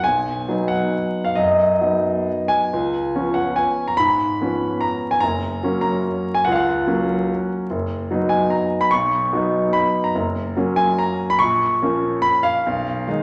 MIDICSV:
0, 0, Header, 1, 2, 480
1, 0, Start_track
1, 0, Key_signature, 6, "major"
1, 0, Tempo, 436681
1, 54, Time_signature, 3, 2, 24, 8
1, 1978, Tempo, 466563
1, 2938, Tempo, 426439
1, 3898, Tempo, 410116
1, 10618, Tempo, 415512
1, 15125, End_track
2, 0, Start_track
2, 0, Title_t, "Grand piano"
2, 0, Program_c, 0, 0
2, 39, Note_on_c, 0, 80, 84
2, 64, Note_on_c, 0, 35, 49
2, 260, Control_c, 0, 64, 127
2, 517, Note_off_c, 0, 35, 0
2, 532, Note_on_c, 0, 54, 41
2, 535, Note_on_c, 0, 59, 40
2, 543, Note_on_c, 0, 63, 37
2, 747, Note_on_c, 0, 78, 71
2, 763, Note_off_c, 0, 80, 0
2, 1033, Control_c, 0, 64, 0
2, 1369, Note_on_c, 0, 77, 66
2, 1376, Note_off_c, 0, 78, 0
2, 1466, Note_off_c, 0, 54, 0
2, 1467, Note_off_c, 0, 59, 0
2, 1471, Note_off_c, 0, 63, 0
2, 1489, Note_on_c, 0, 75, 76
2, 1497, Note_off_c, 0, 77, 0
2, 1513, Note_on_c, 0, 42, 51
2, 1721, Control_c, 0, 64, 127
2, 1967, Note_off_c, 0, 42, 0
2, 1988, Note_on_c, 0, 54, 35
2, 1992, Note_on_c, 0, 63, 40
2, 1993, Note_on_c, 0, 59, 38
2, 2469, Control_c, 0, 64, 0
2, 2682, Note_on_c, 0, 80, 84
2, 2704, Note_off_c, 0, 75, 0
2, 2901, Note_off_c, 0, 54, 0
2, 2903, Note_off_c, 0, 63, 0
2, 2904, Note_off_c, 0, 59, 0
2, 2937, Note_on_c, 0, 37, 51
2, 3138, Control_c, 0, 64, 127
2, 3392, Note_off_c, 0, 37, 0
2, 3409, Note_on_c, 0, 53, 39
2, 3414, Note_on_c, 0, 59, 37
2, 3416, Note_on_c, 0, 61, 44
2, 3621, Note_on_c, 0, 78, 63
2, 3634, Note_off_c, 0, 80, 0
2, 3867, Note_on_c, 0, 80, 73
2, 3882, Note_off_c, 0, 78, 0
2, 3906, Control_c, 0, 64, 0
2, 4238, Note_on_c, 0, 82, 72
2, 4252, Note_off_c, 0, 80, 0
2, 4340, Note_off_c, 0, 53, 0
2, 4343, Note_off_c, 0, 59, 0
2, 4344, Note_off_c, 0, 61, 0
2, 4349, Note_on_c, 0, 83, 96
2, 4370, Note_off_c, 0, 82, 0
2, 4376, Note_on_c, 0, 44, 51
2, 4561, Control_c, 0, 64, 127
2, 4845, Note_off_c, 0, 44, 0
2, 4862, Note_on_c, 0, 53, 40
2, 4869, Note_on_c, 0, 59, 42
2, 4874, Note_on_c, 0, 61, 42
2, 5327, Note_on_c, 0, 82, 81
2, 5338, Note_off_c, 0, 83, 0
2, 5370, Control_c, 0, 64, 0
2, 5682, Note_on_c, 0, 80, 78
2, 5699, Note_off_c, 0, 82, 0
2, 5783, Note_off_c, 0, 53, 0
2, 5786, Note_off_c, 0, 59, 0
2, 5789, Note_off_c, 0, 61, 0
2, 5793, Note_on_c, 0, 82, 92
2, 5814, Note_off_c, 0, 80, 0
2, 5818, Note_on_c, 0, 30, 57
2, 5995, Control_c, 0, 64, 127
2, 6282, Note_off_c, 0, 30, 0
2, 6295, Note_on_c, 0, 54, 40
2, 6306, Note_on_c, 0, 58, 42
2, 6306, Note_on_c, 0, 61, 45
2, 6487, Note_off_c, 0, 82, 0
2, 6505, Note_on_c, 0, 82, 82
2, 6807, Control_c, 0, 64, 0
2, 7127, Note_on_c, 0, 80, 78
2, 7145, Note_off_c, 0, 82, 0
2, 7232, Note_off_c, 0, 54, 0
2, 7238, Note_off_c, 0, 58, 0
2, 7238, Note_off_c, 0, 61, 0
2, 7246, Note_on_c, 0, 78, 79
2, 7264, Note_off_c, 0, 80, 0
2, 7273, Note_on_c, 0, 37, 60
2, 7332, Note_on_c, 0, 77, 73
2, 7333, Note_off_c, 0, 78, 0
2, 7373, Note_on_c, 0, 78, 78
2, 7411, Note_off_c, 0, 77, 0
2, 7502, Control_c, 0, 64, 127
2, 7739, Note_on_c, 0, 54, 45
2, 7740, Note_off_c, 0, 37, 0
2, 7744, Note_on_c, 0, 58, 44
2, 7746, Note_on_c, 0, 61, 48
2, 8253, Control_c, 0, 64, 0
2, 8460, Note_off_c, 0, 78, 0
2, 8658, Note_off_c, 0, 54, 0
2, 8661, Note_off_c, 0, 58, 0
2, 8662, Note_off_c, 0, 61, 0
2, 8717, Note_on_c, 0, 30, 55
2, 8889, Control_c, 0, 64, 127
2, 9178, Note_off_c, 0, 30, 0
2, 9190, Note_on_c, 0, 54, 41
2, 9199, Note_on_c, 0, 63, 47
2, 9200, Note_on_c, 0, 59, 42
2, 9407, Note_on_c, 0, 80, 75
2, 9655, Note_on_c, 0, 82, 67
2, 9669, Note_off_c, 0, 80, 0
2, 9696, Control_c, 0, 64, 0
2, 10009, Note_on_c, 0, 83, 82
2, 10026, Note_off_c, 0, 82, 0
2, 10106, Note_off_c, 0, 54, 0
2, 10111, Note_off_c, 0, 59, 0
2, 10111, Note_off_c, 0, 63, 0
2, 10127, Note_on_c, 0, 85, 97
2, 10137, Note_off_c, 0, 83, 0
2, 10154, Note_on_c, 0, 35, 57
2, 10346, Control_c, 0, 64, 127
2, 10605, Note_off_c, 0, 35, 0
2, 10619, Note_on_c, 0, 59, 44
2, 10620, Note_on_c, 0, 54, 46
2, 10626, Note_on_c, 0, 63, 51
2, 11083, Note_on_c, 0, 83, 81
2, 11101, Note_off_c, 0, 85, 0
2, 11126, Control_c, 0, 64, 0
2, 11440, Note_on_c, 0, 82, 73
2, 11454, Note_off_c, 0, 83, 0
2, 11536, Note_off_c, 0, 54, 0
2, 11536, Note_off_c, 0, 59, 0
2, 11539, Note_off_c, 0, 63, 0
2, 11568, Note_off_c, 0, 82, 0
2, 11568, Note_on_c, 0, 30, 60
2, 11782, Control_c, 0, 64, 127
2, 12027, Note_off_c, 0, 30, 0
2, 12047, Note_on_c, 0, 54, 44
2, 12051, Note_on_c, 0, 58, 46
2, 12058, Note_on_c, 0, 61, 48
2, 12275, Note_on_c, 0, 80, 83
2, 12533, Note_on_c, 0, 82, 82
2, 12539, Note_off_c, 0, 80, 0
2, 12558, Control_c, 0, 64, 0
2, 12896, Note_on_c, 0, 83, 88
2, 12904, Note_off_c, 0, 82, 0
2, 12982, Note_off_c, 0, 54, 0
2, 12984, Note_off_c, 0, 58, 0
2, 12987, Note_off_c, 0, 61, 0
2, 12998, Note_on_c, 0, 85, 101
2, 13020, Note_off_c, 0, 83, 0
2, 13025, Note_on_c, 0, 34, 60
2, 13231, Control_c, 0, 64, 127
2, 13477, Note_off_c, 0, 34, 0
2, 13501, Note_on_c, 0, 53, 50
2, 13502, Note_on_c, 0, 58, 48
2, 13509, Note_on_c, 0, 61, 48
2, 13958, Note_on_c, 0, 83, 90
2, 13969, Note_off_c, 0, 85, 0
2, 13997, Control_c, 0, 64, 0
2, 14202, Note_on_c, 0, 77, 94
2, 14212, Note_off_c, 0, 83, 0
2, 14417, Note_off_c, 0, 53, 0
2, 14417, Note_off_c, 0, 58, 0
2, 14421, Note_off_c, 0, 61, 0
2, 14472, Note_on_c, 0, 35, 60
2, 14678, Control_c, 0, 64, 127
2, 14928, Note_off_c, 0, 35, 0
2, 14945, Control_c, 0, 64, 0
2, 14948, Note_on_c, 0, 51, 43
2, 14956, Note_on_c, 0, 56, 45
2, 14961, Note_on_c, 0, 63, 52
2, 15125, Note_off_c, 0, 51, 0
2, 15125, Note_off_c, 0, 56, 0
2, 15125, Note_off_c, 0, 63, 0
2, 15125, Note_off_c, 0, 77, 0
2, 15125, End_track
0, 0, End_of_file